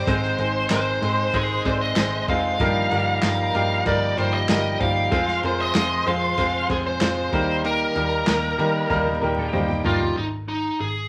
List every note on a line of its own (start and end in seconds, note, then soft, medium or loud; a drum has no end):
0.00 0.71 C5 medium
0.07 0.33 G#1 loud
0.07 0.39 G#2 medium
0.07 0.98 G#2 medium
0.07 0.39 D#3 medium
0.07 0.31 G#3 loud
0.07 0.37 G#3 medium
0.07 0.31 C4 medium
0.07 0.38 C4 medium
0.07 0.31 D#4 medium
0.07 0.38 D#4 medium
0.07 0.39 G#4 medium
0.07 2.55 C5 medium
0.07 0.31 C5 loud
0.07 2.55 C6 medium
0.07 kick loud
0.07 hi-hat pedal medium
0.07 ride medium
0.22 snare soft
0.38 0.64 G#1 medium
0.38 1.00 G#3 medium
0.38 0.63 G#3 medium
0.38 1.01 C4 medium
0.38 0.63 C4 medium
0.38 0.63 D#4 medium
0.38 1.02 D#4 medium
0.38 1.02 G#4 medium
0.38 0.63 C5 medium
0.38 ride medium
0.70 0.96 G#1 medium
0.70 0.94 G#3 medium
0.70 0.94 C4 medium
0.70 0.94 D#4 medium
0.70 0.94 A#4 medium
0.70 1.36 C5 medium
0.70 snare loud
0.70 clap medium
0.70 ride medium
1.02 1.28 G#2 medium
1.02 1.63 G#3 medium
1.02 1.26 G#3 medium
1.02 1.64 C4 medium
1.02 1.26 C4 medium
1.02 1.26 D#4 medium
1.02 1.65 D#4 medium
1.02 1.65 G#4 medium
1.02 1.26 C5 medium
1.02 ride medium
1.33 1.59 G#1 loud
1.33 1.57 G#3 medium
1.33 1.58 C4 medium
1.33 1.58 D#4 medium
1.33 1.66 G#4 medium
1.33 1.58 C5 loud
1.33 kick medium
1.33 ride medium
1.64 1.91 G#1 medium
1.64 1.95 G#3 medium
1.64 1.89 G#3 medium
1.64 1.96 C4 medium
1.64 1.89 C4 medium
1.64 1.96 D#4 medium
1.64 1.89 D#4 medium
1.64 1.97 G#4 medium
1.64 1.71 C5 medium
1.64 1.89 D5 medium
1.64 kick medium
1.64 ride medium
1.81 2.25 D#5 medium
1.96 2.23 G#1 loud
1.96 2.27 G#3 medium
1.96 2.21 G#3 medium
1.96 2.27 C4 medium
1.96 2.21 C4 medium
1.96 2.28 D#4 medium
1.96 2.21 D#4 medium
1.96 2.28 G#4 medium
1.96 2.21 C5 medium
1.96 snare loud
1.96 clap medium
1.96 ride medium
2.28 2.54 F1 medium
2.28 2.59 G#3 medium
2.28 2.52 G#3 medium
2.28 2.60 C4 medium
2.28 2.52 C4 medium
2.28 2.52 D#4 medium
2.28 2.59 D#4 medium
2.28 2.52 F4 medium
2.28 2.60 G#4 medium
2.28 3.23 F5 loud
2.28 kick loud
2.28 ride medium
2.59 2.86 G1 loud
2.59 2.91 G2 medium
2.59 3.51 G2 medium
2.59 2.91 D#3 medium
2.59 2.90 F3 medium
2.59 2.84 G3 loud
2.59 2.90 A#3 medium
2.59 2.84 D#4 medium
2.59 2.91 D#4 medium
2.59 2.84 F4 medium
2.59 2.91 G4 medium
2.59 4.14 A#4 medium
2.59 2.84 A#4 loud
2.59 4.14 A#5 medium
2.59 kick loud
2.59 ride medium
2.91 3.17 G1 medium
2.91 3.54 F3 medium
2.91 3.15 G3 medium
2.91 3.53 A#3 medium
2.91 3.15 D#4 medium
2.91 3.54 D#4 medium
2.91 3.15 F4 medium
2.91 3.55 G4 medium
2.91 3.15 A#4 medium
2.91 ride medium
3.22 3.49 G1 loud
3.22 3.47 G3 medium
3.22 3.47 D#4 medium
3.22 3.47 F4 medium
3.22 3.47 G4 medium
3.22 3.82 F5 medium
3.22 snare loud
3.22 clap medium
3.22 ride medium
3.54 3.80 G2 medium
3.54 4.16 F3 medium
3.54 3.78 G3 medium
3.54 4.16 A#3 medium
3.54 3.78 D#4 medium
3.54 4.17 D#4 medium
3.54 3.78 F4 medium
3.54 4.17 G4 medium
3.54 3.78 A#4 medium
3.54 ride medium
3.85 4.12 G1 loud
3.85 4.10 G3 medium
3.85 4.10 D#4 medium
3.85 4.10 F4 medium
3.85 4.10 A#4 loud
3.85 4.18 D5 loud
3.85 kick medium
3.85 ride medium
4.17 4.43 G1 loud
4.17 4.47 F3 medium
4.17 4.41 G3 medium
4.17 4.48 A#3 medium
4.17 4.41 D#4 medium
4.17 4.48 D#4 medium
4.17 4.41 F4 medium
4.17 5.10 G4 medium
4.17 4.49 G4 medium
4.17 4.41 A#4 medium
4.17 4.33 C5 medium
4.17 5.10 G5 medium
4.17 ride medium
4.34 4.77 D#5 loud
4.48 4.75 G1 loud
4.48 4.79 F3 medium
4.48 4.73 G3 medium
4.48 4.80 A#3 medium
4.48 4.73 D#4 medium
4.48 4.80 D#4 medium
4.48 4.73 F4 medium
4.48 4.81 G4 medium
4.48 4.73 A#4 medium
4.48 snare loud
4.48 clap medium
4.48 ride medium
4.79 5.06 G1 loud
4.79 5.10 F3 medium
4.79 5.04 G3 medium
4.79 5.11 A#3 medium
4.79 5.04 D#4 medium
4.79 5.12 D#4 medium
4.79 5.04 F4 medium
4.79 5.12 G4 medium
4.79 5.04 C5 medium
4.79 5.40 F5 loud
4.79 kick loud
4.79 ride medium
5.11 5.38 F1 loud
5.11 5.42 F3 medium
5.11 5.35 G#3 loud
5.11 5.36 C4 loud
5.11 5.43 C4 medium
5.11 5.36 F4 medium
5.11 5.44 F4 medium
5.11 5.44 G#4 medium
5.11 5.36 C5 loud
5.11 7.29 C5 medium
5.11 7.29 C6 loud
5.11 kick loud
5.11 ride medium
5.27 snare soft
5.43 5.69 F1 medium
5.43 6.05 F3 medium
5.43 5.67 G#3 medium
5.43 5.67 C4 medium
5.43 6.06 C4 medium
5.43 5.67 F4 medium
5.43 6.06 F4 medium
5.43 6.07 G#4 medium
5.43 5.67 A#4 medium
5.43 5.60 C5 loud
5.43 ride medium
5.60 6.09 D#5 loud
5.74 6.01 F1 loud
5.74 5.99 G#3 medium
5.74 5.99 C4 medium
5.74 5.99 F4 medium
5.74 5.99 G#4 medium
5.74 snare loud
5.74 clap medium
5.74 ride medium
6.06 6.32 F2 loud
6.06 6.68 F3 medium
6.06 6.30 G#3 medium
6.06 6.30 C4 medium
6.06 6.68 C4 medium
6.06 6.30 F4 medium
6.06 6.69 F4 medium
6.06 6.70 G#4 medium
6.06 6.30 C5 medium
6.06 6.66 F5 loud
6.06 ride medium
6.37 6.64 F1 loud
6.37 6.62 G#3 medium
6.37 6.62 C4 medium
6.37 6.62 F4 medium
6.37 6.62 C5 loud
6.37 kick medium
6.37 ride medium
6.69 6.96 F1 loud
6.69 6.99 F3 medium
6.69 6.94 G#3 medium
6.69 7.00 C4 medium
6.69 6.94 C4 medium
6.69 6.94 F4 medium
6.69 7.01 F4 medium
6.69 7.01 G#4 medium
6.69 6.76 G#4 medium
6.69 6.94 C5 medium
6.69 kick medium
6.69 ride medium
6.87 7.61 C5 loud
7.00 7.27 F1 loud
7.00 7.32 F3 medium
7.00 7.25 G#3 medium
7.00 7.32 C4 medium
7.00 7.25 C4 medium
7.00 7.25 F4 medium
7.00 7.33 F4 medium
7.00 7.33 G#4 medium
7.00 7.25 C5 medium
7.00 snare loud
7.00 clap medium
7.00 ride medium
7.32 7.84 D#2 medium
7.32 8.24 D#3 medium
7.32 7.63 G3 medium
7.32 7.83 G3 medium
7.32 7.63 A#3 medium
7.32 7.83 A#3 medium
7.32 7.83 D#4 medium
7.32 7.63 D#4 medium
7.32 7.64 G4 medium
7.32 9.18 A#4 medium
7.32 7.83 A#4 medium
7.32 9.18 A#5 loud
7.32 kick loud
7.32 ride medium
7.64 7.96 D#3 medium
7.64 7.94 G3 medium
7.64 7.95 A#3 medium
7.64 7.95 D#4 loud
7.64 7.96 G4 loud
7.64 9.50 A#4 medium
7.64 ride medium
7.95 8.22 D#2 medium
7.95 8.57 G3 medium
7.95 8.19 G3 medium
7.95 8.20 A#3 medium
7.95 8.58 A#3 medium
7.95 8.20 D#4 medium
7.95 8.59 D#4 medium
7.95 8.59 G4 medium
7.95 8.20 A#4 medium
7.95 ride medium
8.27 8.53 D#2 medium
8.27 8.51 G3 medium
8.27 8.51 A#3 medium
8.27 8.51 D#4 medium
8.27 8.51 A#4 medium
8.27 snare loud
8.27 clap medium
8.27 ride medium
8.58 8.85 D#3 medium
8.58 9.20 G3 medium
8.58 8.83 G3 medium
8.58 8.83 A#3 medium
8.58 9.21 A#3 medium
8.58 8.83 D#4 medium
8.58 9.22 D#4 medium
8.58 9.22 G4 medium
8.58 8.83 A#4 loud
8.58 ride medium
8.90 9.16 D#2 loud
8.90 9.14 G3 loud
8.90 9.14 A#3 loud
8.90 9.14 D#4 loud
8.90 9.14 A#4 loud
8.90 kick medium
8.90 high tom medium
9.06 high tom medium
9.21 9.48 D#2 medium
9.21 9.52 G3 medium
9.21 9.46 G3 medium
9.21 9.46 A#3 medium
9.21 9.52 A#3 medium
9.21 9.46 D#4 medium
9.21 9.53 D#4 medium
9.21 10.15 G4 medium
9.21 9.53 G4 medium
9.21 9.46 A#4 medium
9.21 10.15 G5 medium
9.21 mid tom medium
9.38 mid tom medium
9.53 9.80 D#2 loud
9.53 9.83 G3 medium
9.53 9.77 G3 medium
9.53 9.77 A#3 medium
9.53 9.84 A#3 medium
9.53 9.77 D#4 medium
9.53 9.85 D#4 medium
9.53 9.85 G4 medium
9.53 9.77 C5 medium
9.53 mid tom medium
9.69 mid tom medium
9.84 10.11 G1 medium
9.84 10.16 G3 medium
9.84 10.09 G3 medium
9.84 10.09 A#3 medium
9.84 10.17 A#3 medium
9.84 10.09 D#4 medium
9.84 10.17 D#4 medium
9.84 10.17 F4 medium
9.84 10.17 G4 medium
9.84 10.09 A#4 loud
9.84 floor tom loud
10.00 floor tom medium
10.17 10.69 G#1 medium
10.17 10.26 D#4 medium
10.48 10.78 D#4 medium
10.80 11.06 G#1 medium
10.80 11.08 G#4 medium